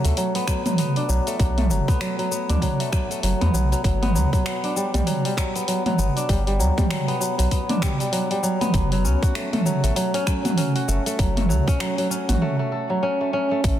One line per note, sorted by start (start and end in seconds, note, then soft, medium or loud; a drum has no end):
0.00 0.16 F#3 medium
0.00 0.35 B3 medium
0.00 0.96 D4 medium
0.05 0.12 D2 medium
0.05 1.27 A3 medium
0.05 open hi-hat soft
0.05 shaker soft
0.17 0.47 F#3 medium
0.17 open hi-hat medium
0.17 shaker soft
0.35 0.78 B3 loud
0.35 open hi-hat soft
0.48 0.65 F#3 medium
0.48 finger snap medium
0.48 kick medium
0.48 shaker medium
0.66 1.08 F#3 medium
0.66 mid tom medium
0.66 open hi-hat soft
0.66 shaker soft
0.78 1.88 B3 medium
0.78 open hi-hat medium
0.78 shaker soft
0.96 2.49 D4 medium
0.96 open hi-hat soft
1.09 1.20 B1 loud
1.09 1.38 F#3 medium
1.09 shaker medium
1.27 1.57 A3 medium
1.27 open hi-hat soft
1.27 shaker soft
1.39 1.72 B1 medium
1.39 1.69 F#3 medium
1.39 kick loud
1.39 open hi-hat medium
1.39 shaker soft
1.58 2.79 A3 medium
1.58 mid tom medium
1.58 open hi-hat soft
1.70 1.81 F#1 medium
1.70 1.99 F#3 medium
1.70 shaker medium
1.88 2.31 B3 medium
1.88 kick loud
1.88 open hi-hat soft
1.88 shaker soft
2.01 2.17 F#3 medium
2.01 finger snap medium
2.01 open hi-hat medium
2.01 shaker soft
2.19 2.61 F#3 medium
2.19 open hi-hat soft
2.31 3.41 B3 medium
2.31 shaker medium
2.49 2.57 D2 medium
2.49 4.17 D4 medium
2.49 mid tom medium
2.49 open hi-hat soft
2.49 shaker soft
2.62 2.91 F#3 medium
2.62 kick medium
2.62 open hi-hat medium
2.62 shaker soft
2.80 3.10 A3 medium
2.80 open hi-hat soft
2.92 3.22 F#3 medium
2.92 finger snap medium
2.92 kick loud
2.92 shaker medium
3.10 5.10 A3 medium
3.10 open hi-hat soft
3.10 shaker soft
3.23 3.34 F#1 loud
3.23 3.52 F#3 medium
3.23 open hi-hat medium
3.23 shaker soft
3.41 3.49 E2 medium
3.41 4.02 B3 medium
3.41 mid tom medium
3.41 open hi-hat soft
3.53 3.75 B1 medium
3.53 3.71 F#3 medium
3.53 shaker medium
3.72 3.83 F#3 medium
3.72 open hi-hat soft
3.72 shaker soft
3.84 4.17 G1 loud
3.84 4.14 F#3 medium
3.84 kick loud
3.84 open hi-hat medium
3.84 shaker soft
4.02 4.45 B3 loud
4.02 mid tom medium
4.02 open hi-hat soft
4.15 4.26 D2 medium
4.15 4.32 F#3 medium
4.15 shaker medium
4.33 5.05 F#3 medium
4.33 kick loud
4.33 open hi-hat soft
4.33 shaker soft
4.46 5.55 B3 medium
4.46 finger snap medium
4.46 open hi-hat medium
4.46 shaker soft
4.64 6.16 D4 medium
4.64 open hi-hat soft
4.76 4.93 G3 medium
4.76 shaker medium
4.94 5.02 B1 medium
4.94 5.24 G3 medium
4.94 mid tom medium
4.94 open hi-hat soft
4.94 shaker soft
5.06 5.36 F#3 medium
5.06 open hi-hat medium
5.06 shaker soft
5.25 6.28 G3 medium
5.25 open hi-hat soft
5.37 5.67 F#3 medium
5.37 finger snap medium
5.37 kick medium
5.37 shaker medium
5.56 5.98 B3 medium
5.56 open hi-hat soft
5.56 shaker soft
5.68 5.85 F#3 medium
5.68 open hi-hat medium
5.68 shaker soft
5.86 6.58 F#3 medium
5.86 mid tom medium
5.86 open hi-hat soft
5.98 6.10 G1 loud
5.98 7.08 B3 medium
5.98 shaker medium
6.16 7.69 D4 medium
6.16 open hi-hat soft
6.16 shaker soft
6.29 6.61 G1 loud
6.29 6.46 G3 medium
6.29 kick loud
6.29 open hi-hat medium
6.29 shaker soft
6.47 6.76 G3 medium
6.47 open hi-hat soft
6.59 6.71 D2 medium
6.59 6.89 F#3 medium
6.59 shaker medium
6.77 7.81 G3 medium
6.77 kick loud
6.77 mid tom medium
6.77 open hi-hat soft
6.77 shaker soft
6.90 7.19 F#3 medium
6.90 finger snap medium
6.90 open hi-hat medium
6.90 shaker soft
7.08 7.51 B3 loud
7.08 open hi-hat soft
7.20 7.37 F#3 medium
7.20 shaker medium
7.38 7.47 B1 medium
7.38 8.11 F#3 medium
7.38 open hi-hat soft
7.38 shaker soft
7.51 8.61 B3 medium
7.51 kick medium
7.51 open hi-hat medium
7.51 shaker soft
7.69 9.11 D4 medium
7.69 mid tom medium
7.69 open hi-hat soft
7.82 7.99 G3 medium
7.82 finger snap medium
7.82 kick medium
7.82 shaker medium
8.00 8.29 G3 medium
8.00 open hi-hat soft
8.00 shaker soft
8.12 8.42 F#3 medium
8.12 open hi-hat medium
8.12 shaker soft
8.30 8.79 G3 medium
8.30 open hi-hat soft
8.43 8.72 F#3 medium
8.43 shaker medium
8.61 10.47 B3 loud
8.61 mid tom medium
8.61 open hi-hat soft
8.61 shaker soft
8.74 9.06 F#1 loud
8.74 8.91 F#3 medium
8.74 kick loud
8.74 open hi-hat medium
8.74 shaker soft
8.92 9.64 F#3 medium
8.92 open hi-hat soft
9.05 9.16 C#2 medium
9.05 10.14 C#4 medium
9.05 shaker medium
9.23 10.69 F#4 medium
9.23 kick loud
9.23 open hi-hat soft
9.23 shaker soft
9.35 9.52 A3 medium
9.35 finger snap medium
9.35 open hi-hat medium
9.35 shaker soft
9.53 9.83 A3 medium
9.53 mid tom medium
9.53 open hi-hat soft
9.66 9.95 F#3 medium
9.66 shaker medium
9.84 9.92 A1 medium
9.84 10.88 A3 medium
9.84 open hi-hat soft
9.84 shaker soft
9.96 10.25 F#3 medium
9.96 open hi-hat medium
9.96 shaker soft
10.14 10.57 C#4 loud
10.14 open hi-hat soft
10.26 10.44 F#3 medium
10.26 finger snap medium
10.26 kick medium
10.26 shaker medium
10.45 11.18 F#3 medium
10.45 mid tom medium
10.45 open hi-hat soft
10.45 shaker soft
10.57 11.67 C#4 medium
10.57 open hi-hat medium
10.57 shaker soft
10.76 12.22 F#4 medium
10.76 open hi-hat soft
10.88 11.00 F#1 loud
10.88 11.06 A3 medium
10.88 shaker medium
11.06 11.36 A3 medium
11.06 open hi-hat soft
11.06 shaker soft
11.19 11.51 F#1 loud
11.19 11.48 F#3 medium
11.19 kick loud
11.19 open hi-hat medium
11.19 shaker soft
11.36 12.41 A3 medium
11.36 mid tom medium
11.36 open hi-hat soft
11.49 11.61 C#2 medium
11.49 11.79 F#3 medium
11.49 shaker medium
11.67 12.10 C#4 loud
11.67 kick loud
11.67 open hi-hat soft
11.67 shaker soft
11.80 11.97 F#3 medium
11.80 finger snap medium
11.80 open hi-hat medium
11.80 shaker soft
11.98 12.89 F#3 medium
11.98 open hi-hat soft
12.10 13.02 C#4 medium
12.10 shaker medium
12.29 12.37 A1 medium
12.29 13.75 F#4 medium
12.29 mid tom medium
12.29 open hi-hat soft
12.29 shaker soft
12.42 12.59 A3 medium
12.59 13.20 A3 medium
12.72 13.79 A4 medium
12.90 13.69 F#3 medium
13.03 13.33 C#4 loud
13.21 13.51 A3 medium
13.33 13.79 C#4 loud
13.51 13.63 A3 medium
13.64 13.79 A1 loud
13.64 13.79 A3 medium
13.64 kick loud
13.64 open hi-hat medium
13.64 shaker soft